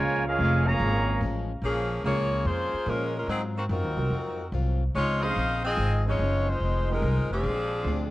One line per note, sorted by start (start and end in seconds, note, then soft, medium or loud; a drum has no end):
0.00 0.38 C#2 medium
0.00 0.27 A#2 soft
0.00 0.26 C#3 loud
0.00 0.25 F3 loud
0.00 0.27 F3 soft
0.00 0.25 G#3 loud
0.00 0.27 G#3 medium
0.00 1.61 G#3 medium
0.00 1.61 A#3 medium
0.00 0.28 C#4 medium
0.00 1.60 C#4 medium
0.00 0.26 F4 medium
0.00 1.60 F4 medium
0.00 0.26 A#4 medium
0.00 0.26 C#5 loud
0.00 0.26 G#5 loud
0.27 0.65 G#3 medium
0.27 0.64 C#4 medium
0.27 0.65 C#4 medium
0.27 0.65 F4 medium
0.27 0.65 G#4 medium
0.27 0.65 A#4 medium
0.27 0.65 F5 loud
0.39 0.79 F1 loud
0.39 0.68 A#2 medium
0.39 0.68 F3 medium
0.39 0.69 G#3 medium
0.39 0.69 C#4 medium
0.67 1.22 C#3 loud
0.67 1.22 F3 medium
0.67 1.22 A#3 loud
0.67 1.22 G#4 medium
0.67 1.22 C#5 loud
0.67 1.22 F5 loud
0.67 1.21 A#5 loud
0.80 1.20 G#1 medium
0.80 1.09 A#2 soft
0.80 1.10 F3 medium
0.80 1.10 G#3 medium
0.80 1.10 C#4 medium
1.21 1.61 A1 medium
1.21 1.51 A#2 medium
1.21 1.51 F3 medium
1.21 1.51 G#3 medium
1.21 1.52 C#4 medium
1.62 2.02 A#1 medium
1.62 1.92 A#2 soft
1.62 1.93 F3 soft
1.62 2.02 F3 medium
1.62 1.93 G#3 soft
1.62 2.03 A#3 medium
1.62 2.02 C#4 medium
1.62 1.93 C#4 soft
1.62 2.02 G#4 loud
2.04 2.44 C#2 medium
2.04 2.34 A#2 medium
2.04 2.34 F3 medium
2.04 2.34 G#3 medium
2.04 2.43 A#3 medium
2.04 2.69 A#3 medium
2.04 2.69 C#4 medium
2.04 2.34 C#4 medium
2.04 2.69 F4 medium
2.04 2.44 F4 medium
2.04 2.69 G#4 medium
2.04 2.44 G#4 medium
2.04 2.44 C#5 loud
2.04 2.69 C#5 medium
2.45 2.71 F2 medium
2.45 2.75 A#2 soft
2.45 2.75 F3 medium
2.45 2.76 G#3 medium
2.45 2.88 A#3 medium
2.45 2.76 C#4 soft
2.45 2.87 F4 medium
2.45 2.88 G#4 medium
2.45 2.88 C5 loud
2.73 muted upright bass stroke soft
2.86 3.27 A#2 medium
2.86 3.17 A#2 medium
2.86 3.17 F3 medium
2.86 3.15 G#3 medium
2.86 3.17 G#3 medium
2.86 3.12 A#3 medium
2.86 3.12 C#4 medium
2.86 3.16 C#4 medium
2.86 3.18 C#4 medium
2.86 3.13 F4 medium
2.86 3.16 F4 medium
2.86 3.13 G#4 medium
2.86 3.16 A#4 medium
2.86 3.13 C5 medium
3.17 3.29 G#3 medium
3.17 3.29 C#4 medium
3.17 3.29 F4 medium
3.17 3.29 A#4 medium
3.28 3.68 G#2 medium
3.28 3.58 G#2 soft
3.28 3.58 F#3 medium
3.28 3.42 F#3 medium
3.28 3.59 C4 medium
3.28 3.43 C4 medium
3.28 3.42 D#4 medium
3.28 3.59 F4 medium
3.28 3.43 G#4 medium
3.58 3.63 D#3 medium
3.58 3.64 A#3 medium
3.58 3.64 C4 medium
3.58 3.64 F#4 medium
3.69 3.84 F#2 medium
3.69 3.99 G#2 medium
3.69 3.99 F#3 medium
3.69 4.49 C4 medium
3.69 4.00 C4 medium
3.69 4.50 D#4 medium
3.69 4.00 F4 medium
3.69 4.50 F#4 medium
3.69 4.50 A#4 medium
3.84 3.96 D#2 medium
3.96 4.09 C2 medium
3.96 4.10 F#3 medium
3.96 4.10 C4 medium
3.96 4.10 D#4 medium
3.96 4.11 F4 medium
3.96 4.11 A#4 medium
4.10 4.51 F2 medium
4.10 4.41 G#2 soft
4.10 4.41 F#3 soft
4.10 4.42 C4 medium
4.10 4.42 F4 medium
4.52 4.93 C2 medium
4.52 4.83 G#2 medium
4.52 4.83 F#3 medium
4.52 4.83 C4 medium
4.52 4.83 F4 medium
4.95 5.35 C#2 medium
4.95 5.24 C#3 soft
4.95 5.25 F3 soft
4.95 5.21 G#3 medium
4.95 5.25 C4 soft
4.95 5.21 D#4 loud
4.95 5.26 D#4 soft
4.95 5.21 F4 loud
4.95 5.21 C#5 loud
5.22 5.35 F3 medium
5.22 5.35 C4 medium
5.22 5.36 C#4 medium
5.22 5.64 D#4 loud
5.22 5.36 D#4 medium
5.22 5.64 G#4 loud
5.22 5.36 G#4 medium
5.22 5.64 C5 loud
5.22 5.64 F5 loud
5.36 5.76 A#1 medium
5.36 5.66 C#3 medium
5.36 5.66 F3 medium
5.36 5.67 C4 medium
5.36 5.67 D#4 medium
5.65 6.03 C4 loud
5.65 6.03 F4 loud
5.65 6.03 G#4 loud
5.65 6.04 D#5 loud
5.77 6.18 G#1 medium
5.77 6.08 C#3 soft
5.77 6.08 F3 medium
5.81 6.09 C4 medium
5.81 6.09 D#4 medium
6.06 6.18 F3 medium
6.06 6.48 G#3 medium
6.06 6.18 C4 medium
6.06 6.19 C#4 medium
6.06 6.19 D#4 medium
6.06 6.48 D#4 medium
6.06 6.48 F4 medium
6.06 6.19 G#4 medium
6.06 6.49 C#5 loud
6.19 6.59 F#1 medium
6.19 6.49 C#3 medium
6.19 6.50 F3 medium
6.19 6.50 C4 medium
6.19 6.50 D#4 medium
6.49 6.90 G#3 medium
6.49 6.90 D#4 medium
6.49 6.90 F4 medium
6.49 6.90 C5 medium
6.60 7.01 F1 medium
6.60 6.91 F2 soft
6.60 6.91 D#3 soft
6.60 6.92 G#3 medium
6.65 6.92 C4 medium
6.89 7.01 F3 medium
6.89 7.01 G#3 medium
6.89 7.31 G#3 medium
6.89 7.02 C4 medium
6.89 7.02 D#4 medium
6.89 7.31 D#4 medium
6.89 7.31 F4 medium
6.89 7.02 G4 medium
6.89 7.31 A#4 loud
7.02 7.18 C2 medium
7.02 7.32 F2 medium
7.02 7.32 D#3 medium
7.02 7.32 G#3 medium
7.02 7.33 C4 medium
7.16 7.29 G#1 soft
7.30 7.43 F1 medium
7.30 8.11 F3 medium
7.30 8.10 C4 medium
7.30 8.11 D4 medium
7.30 8.11 G#4 loud
7.43 7.84 A#1 medium
7.43 7.73 A#2 soft
7.43 7.74 G#3 medium
7.43 7.74 D4 medium
7.43 7.74 G4 soft
7.84 8.11 D2 medium
7.84 8.11 A#2 medium
7.84 8.10 F3 medium
7.84 8.11 G#3 medium
7.84 8.11 C4 medium
7.84 8.11 D4 medium
7.84 8.11 G4 medium